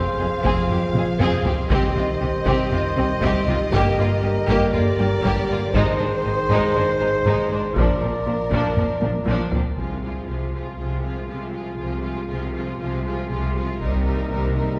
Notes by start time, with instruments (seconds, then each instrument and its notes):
Already playing: french horn section F3 G#4, trumpet section C5, violin section F5
0.18 double bass section F1, cello section F2, viola section C4, violin section G#4
0.43 double bass section F1, cello section F2, viola section C4, violin section G#4, taiko
0.69 double bass section F1, cello section F2, viola section C4, violin section G4, taiko low-mid
0.94 double bass section F1, cello section F2, viola section C4, violin section G#4, taiko mid
1.19 double bass section F1, cello section F2, viola section C4, violin section G#4, taiko low-mid
1.44 double bass section F1, cello section F2, viola section C4, violin section G4, taiko low
1.70 double bass section C2, cello section C3, french horn section D#3 G4, viola section C4, violin section G4 D#5, trumpet section C5, taiko
1.95 double bass section C2, cello section C3, viola section C4, violin section F4
2.21 double bass section C2, cello section C3, viola section C4, violin section G4
2.45 double bass section C2, cello section C3, viola section C4, violin section G4, taiko
2.71 double bass section C2, cello section C3, viola section C4, violin section F4, taiko low-mid
2.96 double bass section C2, cello section C3, viola section C4, violin section G4
3.21 double bass section C2, cello section C3, viola section C4, violin section G4, taiko
3.47 double bass section C2, cello section C3, viola section C4, violin section F4
3.71 double bass section G1, cello section G2, french horn section D3, viola section A#3, violin section G4, trumpet section A#4, taiko
3.97 double bass section G1, cello section G2, viola section A#3, violin section F4
4.22 double bass section G1, cello section G2, viola section A#3, violin section G4
4.47 double bass section G1, cello section G2, viola section A#3, violin section G4, taiko
4.73 double bass section G1, cello section G2, viola section A#3, violin section F4 D5, taiko low-mid
4.98 double bass section G1, cello section G2, viola section A#3, violin section G4
5.23 double bass section G1, cello section G2, viola section A#3, violin section G4, taiko
5.48 double bass section G1, cello section G2, viola section A#3, violin section F4
5.74 double bass section G#1, cello section G#2, french horn section D#3 G#4, viola section G#3, violin section D#4 C5, trumpet section C5, taiko
5.99 double bass section G#1, cello section G#2, viola section G#3, violin section D4
6.24 double bass section G#1, cello section G#2, viola section G#3, violin section D#4
6.50 double bass section G#1, cello section G#2, viola section G#3, violin section D#4, taiko
6.75 double bass section G#1, cello section G#2, viola section G#3, violin section D4, taiko low-mid
7.00 double bass section G#1, cello section G#2, viola section G#3, violin section D#4
7.25 double bass section G#1, cello section G#2, viola section G#3, violin section D#4, taiko
7.50 double bass section G#1, cello section G#2, viola section G#3, violin section D4
7.75 double bass section A#1, cello section A#2, french horn section F3 A#4, viola section F3, violin section D4 A#4, trumpet section D5, taiko
8.00 double bass section A#1, cello section A#2, viola section F3, violin section C4
8.26 double bass section A#1, cello section A#2, viola section F3, violin section D4
8.49 double bass section A#1, cello section A#2, viola section F3, taiko
8.54 violin section D4
8.75 double bass section A#1, cello section A#2, viola section F3, violin section C4, taiko low-mid
9.01 double bass section A#1, cello section A#2, viola section F3, violin section D4, taiko high
9.26 double bass section A#1, cello section A#2, viola section F3, violin section D4, taiko high
9.51 double bass section A#1, cello section A#2, viola section F3, violin section C4, taiko low
9.76 double bass section C2, timpani C3, cello section C3, viola section F3, french horn section G#3 F4, violin section F4 G#4, taiko
10.02 viola section F3, violin section F4 G#4
10.27 double bass section C2, cello section C3, viola section F3, violin section F4 G#4
10.53 viola section F3, violin section F4 G#4
10.78 double bass section C2, cello section C3, viola section F3, violin section F4 G#4
11.03 viola section F3, violin section F4 G#4
11.28 double bass section C2, cello section C3, viola section F3, violin section F4 G#4
11.53 viola section F3, violin section F4 G#4
11.78 double bass section C2, cello section C3, viola section F3, violin section F4 G#4
12.02 viola section F3, violin section F4 G#4
12.29 double bass section C2, cello section C3, viola section F3, violin section F4 G#4
12.55 viola section F3, violin section F4 G#4
12.79 double bass section C2, cello section C3, viola section F3, violin section F4 G#4
13.05 viola section F3, violin section F4 G#4
13.30 double bass section C2, cello section C3, viola section F3, violin section F4 G#4
13.55 viola section F3, violin section F4 G#4
13.80 double bass section C2, timpani C3, cello section C3, viola section G3, french horn section A#3 D#4, violin section D#4 A#4, taiko
13.88 timpani C3
13.95 timpani C3
14.02 timpani C3, viola section G3, violin section D#4 A#4
14.10 timpani C3
14.18 timpani C3
14.26 timpani C3
14.30 double bass section C2, cello section C3, timpani C3, viola section G3, violin section D#4 A#4
14.40 timpani C3
14.48 timpani C3
14.55 timpani C3, viola section G3, violin section D#4 A#4
14.62 timpani C3
14.70 timpani C3